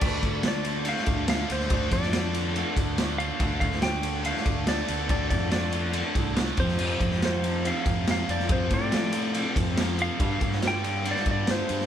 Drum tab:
CC |x---------------|----------------|----------------|----------------|
RD |--x-x-x-x-x-x-x-|x-x-x-x-x-x-x-x-|x-x-x-x-x-x-x-x-|x-x-x-x-x-x-x-x-|
SD |----o----o--o--o|---oo-------o---|---oo----o--o---|----o-------o--o|
BD |o-o-------o-----|o-o-------o-----|o-o-------o-----|o-o-------o---o-|

CC |x---------------|----------------|----------------|
RD |--x-x-x-x-x-x-x-|x-x-x-x-x-x-x-x-|x-x-x-x-x-x-x-x-|
SD |---oo-------o--o|----o-------o---|---oo----o--o--o|
BD |--o-------o-----|o-o-------o-----|o-o-------o-----|